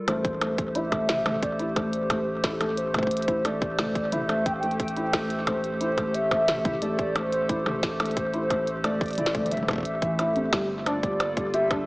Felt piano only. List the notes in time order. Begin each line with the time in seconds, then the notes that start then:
0.08 A3
0.41 A3
0.75 E4
0.92 A3
1.26 A3
1.59 E4
1.76 A3
2.10 A3
2.44 E4
2.61 A3
2.94 A3
3.28 E4
3.45 A3
3.79 A3
4.12 E4
4.29 A3
4.63 A3
4.97 E4
5.13 A3
5.47 A3
5.81 E4
5.98 A3
6.31 A3
6.65 E4
6.82 A3
7.16 A3
7.49 E4
7.66 A3
8.00 A3
8.34 E4
8.50 A3
8.84 A3
9.18 E4
9.35 A3
9.68 A3
10.02 E3
10.19 E4
10.36 C4
10.53 G3
10.86 D4
11.03 G3
11.37 G3
11.54 G4
11.71 D4